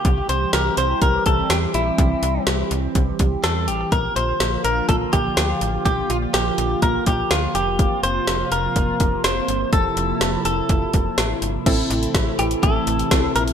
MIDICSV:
0, 0, Header, 1, 6, 480
1, 0, Start_track
1, 0, Tempo, 483871
1, 50, Time_signature, 4, 2, 24, 8
1, 13422, End_track
2, 0, Start_track
2, 0, Title_t, "Clean electric guitar"
2, 0, Program_c, 0, 27
2, 0, Note_on_c, 0, 67, 91
2, 287, Note_off_c, 0, 67, 0
2, 291, Note_on_c, 0, 72, 89
2, 526, Note_off_c, 0, 72, 0
2, 530, Note_on_c, 0, 70, 93
2, 753, Note_off_c, 0, 70, 0
2, 771, Note_on_c, 0, 72, 94
2, 1007, Note_off_c, 0, 72, 0
2, 1011, Note_on_c, 0, 70, 88
2, 1248, Note_off_c, 0, 70, 0
2, 1252, Note_on_c, 0, 69, 83
2, 1493, Note_on_c, 0, 67, 81
2, 1498, Note_off_c, 0, 69, 0
2, 1557, Note_off_c, 0, 67, 0
2, 1732, Note_on_c, 0, 64, 73
2, 2411, Note_off_c, 0, 64, 0
2, 3411, Note_on_c, 0, 69, 94
2, 3648, Note_on_c, 0, 67, 87
2, 3657, Note_off_c, 0, 69, 0
2, 3872, Note_off_c, 0, 67, 0
2, 3889, Note_on_c, 0, 70, 104
2, 4124, Note_off_c, 0, 70, 0
2, 4128, Note_on_c, 0, 72, 103
2, 4575, Note_off_c, 0, 72, 0
2, 4609, Note_on_c, 0, 70, 98
2, 4842, Note_off_c, 0, 70, 0
2, 4846, Note_on_c, 0, 69, 96
2, 4912, Note_off_c, 0, 69, 0
2, 5088, Note_on_c, 0, 67, 98
2, 5795, Note_off_c, 0, 67, 0
2, 5807, Note_on_c, 0, 67, 93
2, 6051, Note_on_c, 0, 65, 83
2, 6055, Note_off_c, 0, 67, 0
2, 6115, Note_off_c, 0, 65, 0
2, 6291, Note_on_c, 0, 67, 95
2, 6767, Note_off_c, 0, 67, 0
2, 6771, Note_on_c, 0, 70, 95
2, 7005, Note_off_c, 0, 70, 0
2, 7009, Note_on_c, 0, 67, 89
2, 7248, Note_on_c, 0, 65, 84
2, 7256, Note_off_c, 0, 67, 0
2, 7472, Note_off_c, 0, 65, 0
2, 7489, Note_on_c, 0, 67, 90
2, 7936, Note_off_c, 0, 67, 0
2, 7970, Note_on_c, 0, 72, 96
2, 8416, Note_off_c, 0, 72, 0
2, 8451, Note_on_c, 0, 70, 97
2, 9167, Note_off_c, 0, 70, 0
2, 9171, Note_on_c, 0, 72, 90
2, 9646, Note_off_c, 0, 72, 0
2, 9650, Note_on_c, 0, 69, 90
2, 10359, Note_off_c, 0, 69, 0
2, 10371, Note_on_c, 0, 69, 82
2, 11290, Note_off_c, 0, 69, 0
2, 12292, Note_on_c, 0, 67, 83
2, 12356, Note_off_c, 0, 67, 0
2, 12531, Note_on_c, 0, 69, 92
2, 13210, Note_off_c, 0, 69, 0
2, 13250, Note_on_c, 0, 70, 98
2, 13315, Note_off_c, 0, 70, 0
2, 13422, End_track
3, 0, Start_track
3, 0, Title_t, "Synth keys"
3, 0, Program_c, 1, 88
3, 11570, Note_on_c, 1, 60, 82
3, 11570, Note_on_c, 1, 64, 76
3, 11570, Note_on_c, 1, 69, 87
3, 12981, Note_off_c, 1, 60, 0
3, 12981, Note_off_c, 1, 64, 0
3, 12981, Note_off_c, 1, 69, 0
3, 13009, Note_on_c, 1, 64, 49
3, 13010, Note_on_c, 1, 60, 52
3, 13010, Note_on_c, 1, 69, 58
3, 13422, Note_off_c, 1, 60, 0
3, 13422, Note_off_c, 1, 64, 0
3, 13422, Note_off_c, 1, 69, 0
3, 13422, End_track
4, 0, Start_track
4, 0, Title_t, "Analog synth pad"
4, 0, Program_c, 2, 89
4, 0, Note_on_c, 2, 67, 83
4, 50, Note_on_c, 2, 55, 70
4, 50, Note_on_c, 2, 60, 71
4, 51, Note_on_c, 2, 52, 75
4, 3850, Note_off_c, 2, 67, 0
4, 3851, Note_off_c, 2, 60, 0
4, 3852, Note_off_c, 2, 52, 0
4, 3852, Note_off_c, 2, 55, 0
4, 3890, Note_on_c, 2, 50, 76
4, 3891, Note_on_c, 2, 53, 68
4, 3891, Note_on_c, 2, 58, 69
4, 3891, Note_on_c, 2, 65, 83
4, 5791, Note_off_c, 2, 58, 0
4, 5812, Note_on_c, 2, 58, 70
4, 7454, Note_off_c, 2, 50, 0
4, 7454, Note_off_c, 2, 53, 0
4, 7454, Note_off_c, 2, 65, 0
4, 7488, Note_on_c, 2, 53, 67
4, 7488, Note_on_c, 2, 65, 84
4, 7489, Note_on_c, 2, 48, 76
4, 9390, Note_off_c, 2, 65, 0
4, 9409, Note_on_c, 2, 64, 83
4, 11529, Note_off_c, 2, 48, 0
4, 11529, Note_off_c, 2, 53, 0
4, 11531, Note_off_c, 2, 58, 0
4, 11547, Note_off_c, 2, 64, 0
4, 11570, Note_on_c, 2, 48, 77
4, 11570, Note_on_c, 2, 64, 84
4, 11571, Note_on_c, 2, 52, 72
4, 11571, Note_on_c, 2, 57, 72
4, 13422, Note_off_c, 2, 48, 0
4, 13422, Note_off_c, 2, 52, 0
4, 13422, Note_off_c, 2, 57, 0
4, 13422, Note_off_c, 2, 64, 0
4, 13422, End_track
5, 0, Start_track
5, 0, Title_t, "FM bass"
5, 0, Program_c, 3, 39
5, 49, Note_on_c, 3, 36, 115
5, 217, Note_off_c, 3, 36, 0
5, 289, Note_on_c, 3, 36, 98
5, 457, Note_off_c, 3, 36, 0
5, 529, Note_on_c, 3, 36, 107
5, 697, Note_off_c, 3, 36, 0
5, 769, Note_on_c, 3, 36, 105
5, 937, Note_off_c, 3, 36, 0
5, 1009, Note_on_c, 3, 36, 96
5, 1177, Note_off_c, 3, 36, 0
5, 1252, Note_on_c, 3, 36, 98
5, 1419, Note_off_c, 3, 36, 0
5, 1488, Note_on_c, 3, 40, 88
5, 1656, Note_off_c, 3, 40, 0
5, 1729, Note_on_c, 3, 34, 86
5, 1897, Note_off_c, 3, 34, 0
5, 1969, Note_on_c, 3, 36, 109
5, 2137, Note_off_c, 3, 36, 0
5, 2208, Note_on_c, 3, 36, 101
5, 2377, Note_off_c, 3, 36, 0
5, 2449, Note_on_c, 3, 36, 99
5, 2617, Note_off_c, 3, 36, 0
5, 2690, Note_on_c, 3, 36, 96
5, 2857, Note_off_c, 3, 36, 0
5, 2930, Note_on_c, 3, 36, 101
5, 3098, Note_off_c, 3, 36, 0
5, 3172, Note_on_c, 3, 36, 101
5, 3339, Note_off_c, 3, 36, 0
5, 3409, Note_on_c, 3, 40, 97
5, 3650, Note_on_c, 3, 33, 89
5, 3664, Note_off_c, 3, 40, 0
5, 3818, Note_off_c, 3, 33, 0
5, 3889, Note_on_c, 3, 34, 110
5, 4057, Note_off_c, 3, 34, 0
5, 4129, Note_on_c, 3, 34, 108
5, 4297, Note_off_c, 3, 34, 0
5, 4368, Note_on_c, 3, 34, 99
5, 4537, Note_off_c, 3, 34, 0
5, 4607, Note_on_c, 3, 34, 94
5, 4776, Note_off_c, 3, 34, 0
5, 4850, Note_on_c, 3, 34, 106
5, 5018, Note_off_c, 3, 34, 0
5, 5092, Note_on_c, 3, 34, 99
5, 5259, Note_off_c, 3, 34, 0
5, 5329, Note_on_c, 3, 38, 95
5, 5497, Note_off_c, 3, 38, 0
5, 5569, Note_on_c, 3, 33, 90
5, 5737, Note_off_c, 3, 33, 0
5, 5809, Note_on_c, 3, 34, 106
5, 5977, Note_off_c, 3, 34, 0
5, 6049, Note_on_c, 3, 34, 102
5, 6217, Note_off_c, 3, 34, 0
5, 6289, Note_on_c, 3, 34, 93
5, 6457, Note_off_c, 3, 34, 0
5, 6529, Note_on_c, 3, 34, 97
5, 6697, Note_off_c, 3, 34, 0
5, 6770, Note_on_c, 3, 34, 105
5, 6938, Note_off_c, 3, 34, 0
5, 7012, Note_on_c, 3, 34, 110
5, 7179, Note_off_c, 3, 34, 0
5, 7250, Note_on_c, 3, 38, 91
5, 7418, Note_off_c, 3, 38, 0
5, 7489, Note_on_c, 3, 29, 95
5, 7825, Note_off_c, 3, 29, 0
5, 7969, Note_on_c, 3, 29, 101
5, 8137, Note_off_c, 3, 29, 0
5, 8209, Note_on_c, 3, 29, 98
5, 8377, Note_off_c, 3, 29, 0
5, 8448, Note_on_c, 3, 29, 98
5, 8617, Note_off_c, 3, 29, 0
5, 8690, Note_on_c, 3, 29, 98
5, 8858, Note_off_c, 3, 29, 0
5, 8932, Note_on_c, 3, 29, 97
5, 9099, Note_off_c, 3, 29, 0
5, 9168, Note_on_c, 3, 29, 88
5, 9337, Note_off_c, 3, 29, 0
5, 9409, Note_on_c, 3, 31, 89
5, 9577, Note_off_c, 3, 31, 0
5, 9649, Note_on_c, 3, 29, 97
5, 9817, Note_off_c, 3, 29, 0
5, 9888, Note_on_c, 3, 29, 100
5, 10057, Note_off_c, 3, 29, 0
5, 10128, Note_on_c, 3, 29, 100
5, 10296, Note_off_c, 3, 29, 0
5, 10368, Note_on_c, 3, 29, 98
5, 10537, Note_off_c, 3, 29, 0
5, 10610, Note_on_c, 3, 29, 108
5, 10778, Note_off_c, 3, 29, 0
5, 10852, Note_on_c, 3, 29, 103
5, 11019, Note_off_c, 3, 29, 0
5, 11088, Note_on_c, 3, 33, 91
5, 11257, Note_off_c, 3, 33, 0
5, 11328, Note_on_c, 3, 31, 90
5, 11497, Note_off_c, 3, 31, 0
5, 11569, Note_on_c, 3, 33, 112
5, 11737, Note_off_c, 3, 33, 0
5, 11809, Note_on_c, 3, 33, 115
5, 11977, Note_off_c, 3, 33, 0
5, 12048, Note_on_c, 3, 33, 104
5, 12216, Note_off_c, 3, 33, 0
5, 12290, Note_on_c, 3, 33, 104
5, 12458, Note_off_c, 3, 33, 0
5, 12530, Note_on_c, 3, 33, 99
5, 12697, Note_off_c, 3, 33, 0
5, 12769, Note_on_c, 3, 33, 98
5, 12937, Note_off_c, 3, 33, 0
5, 13008, Note_on_c, 3, 36, 95
5, 13177, Note_off_c, 3, 36, 0
5, 13248, Note_on_c, 3, 34, 93
5, 13417, Note_off_c, 3, 34, 0
5, 13422, End_track
6, 0, Start_track
6, 0, Title_t, "Drums"
6, 48, Note_on_c, 9, 42, 67
6, 49, Note_on_c, 9, 36, 113
6, 147, Note_off_c, 9, 42, 0
6, 148, Note_off_c, 9, 36, 0
6, 290, Note_on_c, 9, 42, 75
6, 389, Note_off_c, 9, 42, 0
6, 527, Note_on_c, 9, 38, 113
6, 530, Note_on_c, 9, 42, 81
6, 626, Note_off_c, 9, 38, 0
6, 629, Note_off_c, 9, 42, 0
6, 767, Note_on_c, 9, 42, 79
6, 866, Note_off_c, 9, 42, 0
6, 1007, Note_on_c, 9, 42, 70
6, 1009, Note_on_c, 9, 36, 94
6, 1107, Note_off_c, 9, 42, 0
6, 1108, Note_off_c, 9, 36, 0
6, 1247, Note_on_c, 9, 42, 72
6, 1252, Note_on_c, 9, 36, 85
6, 1347, Note_off_c, 9, 42, 0
6, 1351, Note_off_c, 9, 36, 0
6, 1487, Note_on_c, 9, 42, 75
6, 1488, Note_on_c, 9, 38, 100
6, 1587, Note_off_c, 9, 38, 0
6, 1587, Note_off_c, 9, 42, 0
6, 1729, Note_on_c, 9, 42, 71
6, 1828, Note_off_c, 9, 42, 0
6, 1968, Note_on_c, 9, 42, 68
6, 1969, Note_on_c, 9, 36, 114
6, 2068, Note_off_c, 9, 36, 0
6, 2068, Note_off_c, 9, 42, 0
6, 2209, Note_on_c, 9, 42, 78
6, 2308, Note_off_c, 9, 42, 0
6, 2448, Note_on_c, 9, 38, 114
6, 2450, Note_on_c, 9, 42, 82
6, 2547, Note_off_c, 9, 38, 0
6, 2549, Note_off_c, 9, 42, 0
6, 2688, Note_on_c, 9, 42, 75
6, 2787, Note_off_c, 9, 42, 0
6, 2928, Note_on_c, 9, 42, 69
6, 2930, Note_on_c, 9, 36, 94
6, 3027, Note_off_c, 9, 42, 0
6, 3029, Note_off_c, 9, 36, 0
6, 3168, Note_on_c, 9, 42, 68
6, 3172, Note_on_c, 9, 36, 85
6, 3267, Note_off_c, 9, 42, 0
6, 3271, Note_off_c, 9, 36, 0
6, 3408, Note_on_c, 9, 42, 74
6, 3409, Note_on_c, 9, 38, 99
6, 3508, Note_off_c, 9, 38, 0
6, 3508, Note_off_c, 9, 42, 0
6, 3649, Note_on_c, 9, 42, 69
6, 3748, Note_off_c, 9, 42, 0
6, 3889, Note_on_c, 9, 36, 109
6, 3889, Note_on_c, 9, 42, 65
6, 3988, Note_off_c, 9, 42, 0
6, 3989, Note_off_c, 9, 36, 0
6, 4130, Note_on_c, 9, 42, 79
6, 4229, Note_off_c, 9, 42, 0
6, 4368, Note_on_c, 9, 38, 108
6, 4370, Note_on_c, 9, 42, 83
6, 4467, Note_off_c, 9, 38, 0
6, 4469, Note_off_c, 9, 42, 0
6, 4608, Note_on_c, 9, 42, 77
6, 4707, Note_off_c, 9, 42, 0
6, 4848, Note_on_c, 9, 42, 71
6, 4850, Note_on_c, 9, 36, 93
6, 4947, Note_off_c, 9, 42, 0
6, 4949, Note_off_c, 9, 36, 0
6, 5087, Note_on_c, 9, 42, 69
6, 5092, Note_on_c, 9, 36, 85
6, 5186, Note_off_c, 9, 42, 0
6, 5191, Note_off_c, 9, 36, 0
6, 5328, Note_on_c, 9, 38, 96
6, 5328, Note_on_c, 9, 42, 75
6, 5427, Note_off_c, 9, 38, 0
6, 5427, Note_off_c, 9, 42, 0
6, 5569, Note_on_c, 9, 42, 69
6, 5668, Note_off_c, 9, 42, 0
6, 5809, Note_on_c, 9, 36, 110
6, 5809, Note_on_c, 9, 42, 69
6, 5908, Note_off_c, 9, 42, 0
6, 5909, Note_off_c, 9, 36, 0
6, 6050, Note_on_c, 9, 42, 75
6, 6149, Note_off_c, 9, 42, 0
6, 6288, Note_on_c, 9, 38, 108
6, 6291, Note_on_c, 9, 42, 81
6, 6388, Note_off_c, 9, 38, 0
6, 6390, Note_off_c, 9, 42, 0
6, 6529, Note_on_c, 9, 42, 80
6, 6628, Note_off_c, 9, 42, 0
6, 6768, Note_on_c, 9, 42, 70
6, 6770, Note_on_c, 9, 36, 94
6, 6867, Note_off_c, 9, 42, 0
6, 6869, Note_off_c, 9, 36, 0
6, 7008, Note_on_c, 9, 42, 69
6, 7012, Note_on_c, 9, 36, 88
6, 7107, Note_off_c, 9, 42, 0
6, 7111, Note_off_c, 9, 36, 0
6, 7249, Note_on_c, 9, 38, 99
6, 7249, Note_on_c, 9, 42, 75
6, 7348, Note_off_c, 9, 38, 0
6, 7348, Note_off_c, 9, 42, 0
6, 7489, Note_on_c, 9, 42, 69
6, 7588, Note_off_c, 9, 42, 0
6, 7729, Note_on_c, 9, 36, 113
6, 7729, Note_on_c, 9, 42, 68
6, 7828, Note_off_c, 9, 42, 0
6, 7829, Note_off_c, 9, 36, 0
6, 7970, Note_on_c, 9, 42, 78
6, 8070, Note_off_c, 9, 42, 0
6, 8209, Note_on_c, 9, 38, 109
6, 8211, Note_on_c, 9, 42, 84
6, 8308, Note_off_c, 9, 38, 0
6, 8310, Note_off_c, 9, 42, 0
6, 8448, Note_on_c, 9, 42, 79
6, 8547, Note_off_c, 9, 42, 0
6, 8688, Note_on_c, 9, 42, 71
6, 8690, Note_on_c, 9, 36, 94
6, 8787, Note_off_c, 9, 42, 0
6, 8789, Note_off_c, 9, 36, 0
6, 8928, Note_on_c, 9, 42, 72
6, 8932, Note_on_c, 9, 36, 89
6, 9027, Note_off_c, 9, 42, 0
6, 9031, Note_off_c, 9, 36, 0
6, 9168, Note_on_c, 9, 38, 100
6, 9168, Note_on_c, 9, 42, 76
6, 9267, Note_off_c, 9, 38, 0
6, 9267, Note_off_c, 9, 42, 0
6, 9409, Note_on_c, 9, 42, 70
6, 9508, Note_off_c, 9, 42, 0
6, 9648, Note_on_c, 9, 42, 67
6, 9649, Note_on_c, 9, 36, 111
6, 9748, Note_off_c, 9, 36, 0
6, 9748, Note_off_c, 9, 42, 0
6, 9890, Note_on_c, 9, 42, 75
6, 9989, Note_off_c, 9, 42, 0
6, 10128, Note_on_c, 9, 38, 106
6, 10131, Note_on_c, 9, 42, 83
6, 10227, Note_off_c, 9, 38, 0
6, 10230, Note_off_c, 9, 42, 0
6, 10368, Note_on_c, 9, 42, 78
6, 10467, Note_off_c, 9, 42, 0
6, 10608, Note_on_c, 9, 42, 71
6, 10609, Note_on_c, 9, 36, 98
6, 10707, Note_off_c, 9, 42, 0
6, 10709, Note_off_c, 9, 36, 0
6, 10847, Note_on_c, 9, 42, 69
6, 10852, Note_on_c, 9, 36, 82
6, 10947, Note_off_c, 9, 42, 0
6, 10951, Note_off_c, 9, 36, 0
6, 11088, Note_on_c, 9, 42, 74
6, 11089, Note_on_c, 9, 38, 99
6, 11188, Note_off_c, 9, 38, 0
6, 11188, Note_off_c, 9, 42, 0
6, 11329, Note_on_c, 9, 42, 69
6, 11429, Note_off_c, 9, 42, 0
6, 11570, Note_on_c, 9, 36, 119
6, 11570, Note_on_c, 9, 42, 70
6, 11570, Note_on_c, 9, 49, 95
6, 11669, Note_off_c, 9, 36, 0
6, 11669, Note_off_c, 9, 42, 0
6, 11669, Note_off_c, 9, 49, 0
6, 11811, Note_on_c, 9, 42, 77
6, 11910, Note_off_c, 9, 42, 0
6, 11931, Note_on_c, 9, 42, 53
6, 12030, Note_off_c, 9, 42, 0
6, 12048, Note_on_c, 9, 36, 124
6, 12049, Note_on_c, 9, 38, 113
6, 12051, Note_on_c, 9, 42, 86
6, 12147, Note_off_c, 9, 36, 0
6, 12148, Note_off_c, 9, 38, 0
6, 12150, Note_off_c, 9, 42, 0
6, 12289, Note_on_c, 9, 42, 83
6, 12388, Note_off_c, 9, 42, 0
6, 12409, Note_on_c, 9, 42, 63
6, 12509, Note_off_c, 9, 42, 0
6, 12529, Note_on_c, 9, 42, 70
6, 12530, Note_on_c, 9, 36, 114
6, 12628, Note_off_c, 9, 42, 0
6, 12629, Note_off_c, 9, 36, 0
6, 12768, Note_on_c, 9, 42, 72
6, 12867, Note_off_c, 9, 42, 0
6, 12891, Note_on_c, 9, 42, 53
6, 12990, Note_off_c, 9, 42, 0
6, 13008, Note_on_c, 9, 36, 106
6, 13008, Note_on_c, 9, 38, 104
6, 13008, Note_on_c, 9, 42, 79
6, 13107, Note_off_c, 9, 36, 0
6, 13107, Note_off_c, 9, 38, 0
6, 13107, Note_off_c, 9, 42, 0
6, 13249, Note_on_c, 9, 42, 75
6, 13348, Note_off_c, 9, 42, 0
6, 13368, Note_on_c, 9, 42, 58
6, 13422, Note_off_c, 9, 42, 0
6, 13422, End_track
0, 0, End_of_file